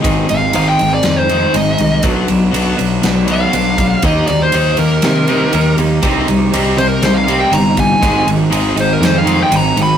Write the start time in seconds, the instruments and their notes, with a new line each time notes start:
0.04 picked electric bass G#1, clean electric guitar G#2 D#3 G#3 C4 D#4, kick, ride
0.28 picked electric bass G#1, overdriven electric guitar G#2 D#3, clean electric guitar G#3 C4 D#4, lead electric guitar F5, ride
0.53 picked electric bass G#1, overdriven electric guitar G#2, clean electric guitar D#3 G#3 C4 D#4, lead electric guitar F5, ride
0.69 lead electric guitar G5
0.78 picked electric bass G#1, clean electric guitar G#2 D#3 G#3 C4 D#4, ride
0.94 lead electric guitar D5
1.03 picked electric bass F2, overdriven electric guitar G#2, clean electric guitar D#3 G#3 C4 D#4, snare, ride
1.19 lead electric guitar C5
1.29 overdriven electric guitar G#2 D#3, clean electric guitar G#3 C4 D#4, ride
1.53 picked electric bass G#1, clean electric guitar G#2 D#3 G#3 C4 D#4, ride
1.57 lead electric guitar D#5
1.78 picked electric bass C2, overdriven electric guitar G#2 D#3, clean electric guitar G#3 C4 D#4, ride
2.03 picked electric bass B1, clean electric guitar B2 F#3 B3 D4, kick, ride
2.28 picked electric bass B1, overdriven electric guitar B2, clean electric guitar F#3 B3 D4, ride
2.53 picked electric bass B1, clean electric guitar B2 F#3 B3 D4, ride
2.76 clean electric guitar B2 F#3 B3 D4, ride
2.80 picked electric bass B1
3.02 picked electric bass B1, clean electric guitar B2 F#3 B3 D4, snare, ride
3.27 overdriven electric guitar B2, clean electric guitar F#3 B3 D4, ride
3.32 lead electric guitar F5
3.52 picked electric bass B1, clean electric guitar B2 F#3 B3 D4, ride
3.78 overdriven electric guitar B2, clean electric guitar F#3 B3 D4, kick, ride
4.02 picked electric bass D#2, clean electric guitar D#3 G3 A#3 D#4, lead electric guitar D#5, kick, ride
4.27 picked electric bass D#2, overdriven electric guitar D#3, clean electric guitar G3 A#3 D#4, lead electric guitar D5, ride
4.42 lead electric guitar C5
4.52 picked electric bass D#2, clean electric guitar D#3 G3 A#3 D#4, ride
4.76 picked electric bass D#2, clean electric guitar D#3 G3 A#3 D#4, lead electric guitar A#4, ride
5.02 picked electric bass C3, clean electric guitar D#3 G3 A#3 D#4, snare, ride
5.27 overdriven electric guitar D#3, clean electric guitar G3 A#3 D#4, ride
5.52 picked electric bass D#2, clean electric guitar D#3 G3 A#3 D#4, ride
5.77 picked electric bass D#2, overdriven electric guitar D#3, clean electric guitar G3 A#3 D#4, ride
6.02 picked electric bass C2, clean electric guitar C3 G3 C4 D#4, kick, ride
6.27 picked electric bass C2, overdriven electric guitar C3, clean electric guitar G3 C4 D#4, ride
6.51 picked electric bass C2, clean electric guitar C3 G3 C4 D#4, ride
6.77 picked electric bass C2, clean electric guitar C3 G3 C4 D#4, lead electric guitar C5, ride
6.89 lead electric guitar A#4
7.02 picked electric bass C2, clean electric guitar C3 G3 C4 D#4, lead electric guitar C5, snare, ride
7.14 lead electric guitar F5
7.27 overdriven electric guitar C3, clean electric guitar G3 C4 D#4, ride
7.40 lead electric guitar G5
7.51 picked electric bass G1, clean electric guitar C3 G3 C4 D#4, lead electric guitar A#5, ride
7.77 overdriven electric guitar C3, clean electric guitar G3 C4 D#4, lead electric guitar G#5, kick, ride
8.01 picked electric bass G#1, clean electric guitar G#2 D#3 G#3 C4 D#4, kick, ride
8.25 picked electric bass G#1, overdriven electric guitar G#2 D#3, clean electric guitar G#3 C4 D#4, ride
8.50 picked electric bass G#1, overdriven electric guitar G#2, clean electric guitar D#3 G#3 C4 D#4, ride
8.75 picked electric bass G#1, clean electric guitar G#2 D#3 G#3 C4 D#4, ride
8.81 lead electric guitar C5
8.93 lead electric guitar A#4
9.00 picked electric bass F2, overdriven electric guitar G#2, clean electric guitar D#3 G#3 C4 D#4, snare, ride
9.05 lead electric guitar C5
9.18 lead electric guitar F5
9.24 overdriven electric guitar G#2 D#3, clean electric guitar G#3 C4 D#4, ride
9.43 lead electric guitar G5
9.51 picked electric bass G#1, clean electric guitar G#2 D#3 G#3 C4 D#4, ride
9.56 lead electric guitar A#5
9.77 picked electric bass G#1, overdriven electric guitar G#2 D#3, clean electric guitar G#3 C4 D#4, ride
9.83 lead electric guitar B5